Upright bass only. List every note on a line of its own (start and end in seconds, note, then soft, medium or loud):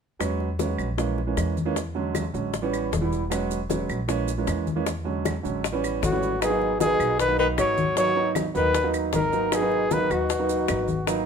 0.20 0.75 E2 medium
0.79 1.33 A#1 medium
1.37 2.28 E2 medium
2.34 2.88 A1 medium
2.92 3.83 E1 medium
3.89 4.44 A#1 medium
4.47 5.39 E2 medium
5.45 5.99 A1 medium
6.03 6.94 G#1 medium
7.00 7.54 B1 medium
7.58 8.49 G#1 medium
8.55 9.09 D#2 medium
9.13 10.04 G#1 medium
10.10 10.64 D#2 medium
10.68 11.26 G#1 medium